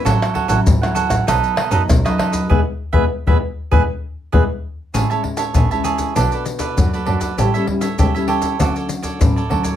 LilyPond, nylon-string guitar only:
\new Staff \with { instrumentName = "Nylon-string guitar" } { \time 4/4 \key a \major \tempo 4 = 98 << { <fis cis' e'>8. <fis cis' e'>8 <fis cis' e'>8. <fis a dis'>8 r16 <fis a dis'>8 <fis a dis'>8. | <e gis b>16 r8 <e gis b>16 r16 <e gis b>16 r8 <e gis b>16 r8. <e gis b>16 r8. | <gis cis' e'>16 <gis cis' e'>4 <gis cis' e'>8. <a d' fis'>4 <a d' fis'>16 r16 <a d' fis'>16 r16 | <g cis' e'>16 <g cis' e'>16 <g cis' e'>16 r16 <g cis' e'>16 <g cis' e'>8. <fis a cis'>4 <fis a cis'>16 r16 <fis a cis'>16 r16 | } \\ { a,4 e4 b,4 fis,4 | r1 | a,4 e4 b,4 fis4 | a,4 e4 d4 a,4 | } >> }